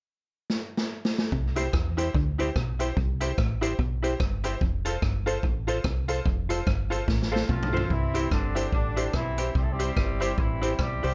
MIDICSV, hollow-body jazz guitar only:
0, 0, Header, 1, 3, 480
1, 0, Start_track
1, 0, Key_signature, 0, "major"
1, 0, Tempo, 411805
1, 1537, Time_signature, 4, 2, 24, 8
1, 12987, End_track
2, 0, Start_track
2, 0, Title_t, "Hollow-body jazz guitar"
2, 0, Program_c, 0, 26
2, 1823, Note_on_c, 0, 64, 82
2, 1830, Note_on_c, 0, 67, 85
2, 1838, Note_on_c, 0, 72, 88
2, 1938, Note_off_c, 0, 64, 0
2, 1941, Note_off_c, 0, 67, 0
2, 1946, Note_off_c, 0, 72, 0
2, 2304, Note_on_c, 0, 64, 81
2, 2313, Note_on_c, 0, 67, 78
2, 2322, Note_on_c, 0, 72, 87
2, 2419, Note_off_c, 0, 64, 0
2, 2423, Note_off_c, 0, 67, 0
2, 2428, Note_off_c, 0, 72, 0
2, 2786, Note_on_c, 0, 64, 94
2, 2794, Note_on_c, 0, 67, 107
2, 2802, Note_on_c, 0, 72, 104
2, 2899, Note_off_c, 0, 64, 0
2, 2903, Note_off_c, 0, 67, 0
2, 2907, Note_off_c, 0, 72, 0
2, 3260, Note_on_c, 0, 64, 76
2, 3270, Note_on_c, 0, 67, 75
2, 3277, Note_on_c, 0, 72, 95
2, 3376, Note_off_c, 0, 64, 0
2, 3381, Note_off_c, 0, 67, 0
2, 3385, Note_off_c, 0, 72, 0
2, 3738, Note_on_c, 0, 64, 86
2, 3746, Note_on_c, 0, 67, 95
2, 3754, Note_on_c, 0, 72, 88
2, 3855, Note_off_c, 0, 64, 0
2, 3859, Note_off_c, 0, 67, 0
2, 3863, Note_off_c, 0, 72, 0
2, 4215, Note_on_c, 0, 64, 90
2, 4223, Note_on_c, 0, 67, 94
2, 4231, Note_on_c, 0, 72, 108
2, 4333, Note_off_c, 0, 64, 0
2, 4337, Note_off_c, 0, 67, 0
2, 4341, Note_off_c, 0, 72, 0
2, 4692, Note_on_c, 0, 64, 90
2, 4701, Note_on_c, 0, 67, 92
2, 4708, Note_on_c, 0, 72, 91
2, 4812, Note_off_c, 0, 64, 0
2, 4816, Note_off_c, 0, 67, 0
2, 4820, Note_off_c, 0, 72, 0
2, 5174, Note_on_c, 0, 64, 88
2, 5182, Note_on_c, 0, 67, 88
2, 5190, Note_on_c, 0, 72, 104
2, 5293, Note_off_c, 0, 64, 0
2, 5296, Note_off_c, 0, 67, 0
2, 5301, Note_off_c, 0, 72, 0
2, 5653, Note_on_c, 0, 65, 90
2, 5661, Note_on_c, 0, 69, 100
2, 5669, Note_on_c, 0, 72, 98
2, 5772, Note_off_c, 0, 65, 0
2, 5776, Note_off_c, 0, 69, 0
2, 5780, Note_off_c, 0, 72, 0
2, 6132, Note_on_c, 0, 65, 80
2, 6140, Note_on_c, 0, 69, 90
2, 6149, Note_on_c, 0, 72, 97
2, 6251, Note_off_c, 0, 65, 0
2, 6255, Note_off_c, 0, 69, 0
2, 6260, Note_off_c, 0, 72, 0
2, 6617, Note_on_c, 0, 65, 94
2, 6625, Note_on_c, 0, 69, 96
2, 6634, Note_on_c, 0, 72, 97
2, 6734, Note_off_c, 0, 65, 0
2, 6738, Note_off_c, 0, 69, 0
2, 6742, Note_off_c, 0, 72, 0
2, 7090, Note_on_c, 0, 65, 83
2, 7096, Note_on_c, 0, 69, 82
2, 7107, Note_on_c, 0, 72, 80
2, 7210, Note_off_c, 0, 65, 0
2, 7213, Note_off_c, 0, 69, 0
2, 7219, Note_off_c, 0, 72, 0
2, 7567, Note_on_c, 0, 65, 96
2, 7577, Note_on_c, 0, 69, 82
2, 7583, Note_on_c, 0, 72, 95
2, 7689, Note_off_c, 0, 65, 0
2, 7694, Note_off_c, 0, 69, 0
2, 7697, Note_off_c, 0, 72, 0
2, 8045, Note_on_c, 0, 65, 74
2, 8055, Note_on_c, 0, 69, 81
2, 8060, Note_on_c, 0, 72, 83
2, 8168, Note_off_c, 0, 65, 0
2, 8173, Note_off_c, 0, 69, 0
2, 8175, Note_off_c, 0, 72, 0
2, 8529, Note_on_c, 0, 65, 91
2, 8540, Note_on_c, 0, 69, 90
2, 8547, Note_on_c, 0, 72, 104
2, 8650, Note_off_c, 0, 65, 0
2, 8655, Note_off_c, 0, 69, 0
2, 8659, Note_off_c, 0, 72, 0
2, 9011, Note_on_c, 0, 65, 87
2, 9018, Note_on_c, 0, 69, 84
2, 9027, Note_on_c, 0, 72, 91
2, 9131, Note_off_c, 0, 65, 0
2, 9135, Note_off_c, 0, 69, 0
2, 9139, Note_off_c, 0, 72, 0
2, 9491, Note_on_c, 0, 64, 84
2, 9500, Note_on_c, 0, 67, 89
2, 9507, Note_on_c, 0, 72, 100
2, 9611, Note_off_c, 0, 64, 0
2, 9616, Note_off_c, 0, 67, 0
2, 9619, Note_off_c, 0, 72, 0
2, 9968, Note_on_c, 0, 64, 80
2, 9980, Note_on_c, 0, 67, 81
2, 9987, Note_on_c, 0, 72, 85
2, 10090, Note_off_c, 0, 64, 0
2, 10096, Note_off_c, 0, 67, 0
2, 10099, Note_off_c, 0, 72, 0
2, 10449, Note_on_c, 0, 64, 89
2, 10459, Note_on_c, 0, 67, 87
2, 10466, Note_on_c, 0, 72, 98
2, 10571, Note_off_c, 0, 64, 0
2, 10576, Note_off_c, 0, 67, 0
2, 10580, Note_off_c, 0, 72, 0
2, 10932, Note_on_c, 0, 64, 86
2, 10942, Note_on_c, 0, 67, 92
2, 10948, Note_on_c, 0, 72, 86
2, 11053, Note_off_c, 0, 64, 0
2, 11058, Note_off_c, 0, 67, 0
2, 11061, Note_off_c, 0, 72, 0
2, 11412, Note_on_c, 0, 64, 84
2, 11422, Note_on_c, 0, 67, 82
2, 11431, Note_on_c, 0, 72, 89
2, 11533, Note_off_c, 0, 64, 0
2, 11538, Note_off_c, 0, 67, 0
2, 11543, Note_off_c, 0, 72, 0
2, 11896, Note_on_c, 0, 64, 89
2, 11903, Note_on_c, 0, 67, 96
2, 11910, Note_on_c, 0, 72, 93
2, 12016, Note_off_c, 0, 64, 0
2, 12019, Note_off_c, 0, 67, 0
2, 12023, Note_off_c, 0, 72, 0
2, 12372, Note_on_c, 0, 64, 96
2, 12383, Note_on_c, 0, 67, 101
2, 12392, Note_on_c, 0, 72, 105
2, 12495, Note_off_c, 0, 64, 0
2, 12500, Note_off_c, 0, 67, 0
2, 12505, Note_off_c, 0, 72, 0
2, 12855, Note_on_c, 0, 64, 75
2, 12865, Note_on_c, 0, 67, 84
2, 12871, Note_on_c, 0, 72, 80
2, 12977, Note_off_c, 0, 64, 0
2, 12982, Note_off_c, 0, 67, 0
2, 12985, Note_off_c, 0, 72, 0
2, 12987, End_track
3, 0, Start_track
3, 0, Title_t, "Muted hollow-body jazz guitar strokes"
3, 2504, Note_on_c, 9, 29, 42
3, 2621, Note_off_c, 9, 29, 0
3, 4415, Note_on_c, 9, 29, 40
3, 4532, Note_off_c, 9, 29, 0
3, 6333, Note_on_c, 9, 29, 41
3, 6450, Note_off_c, 9, 29, 0
3, 8250, Note_on_c, 9, 29, 36
3, 8366, Note_off_c, 9, 29, 0
3, 12987, End_track
0, 0, End_of_file